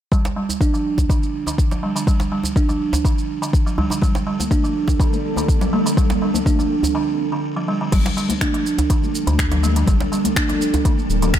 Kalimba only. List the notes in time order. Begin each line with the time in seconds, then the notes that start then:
0.12 G3
0.36 G3
0.61 D4
0.74 F3
1.10 D3
1.47 D3
1.72 F3
1.83 G3
1.96 D3
2.07 G3
2.32 G3
2.56 D4
2.69 F3
3.05 D3
3.42 D3
3.66 F3
3.78 G3
3.91 D3
4.02 G3
4.27 G3
4.51 D4
4.64 F3
5.00 D3
5.37 D3
5.61 F3
5.73 G3
5.86 D3
5.97 G3
6.22 G3
6.46 D4
6.59 F3
6.95 D3
7.32 D3
7.57 F3
7.68 G3
7.81 D3
7.92 G3
8.17 G3
8.41 D4
8.54 F3
8.90 D3
9.27 D3
9.52 F3
9.63 G3
9.76 D3
9.88 G3
10.12 G3
10.36 D4
10.49 F3
10.85 D3
11.22 D3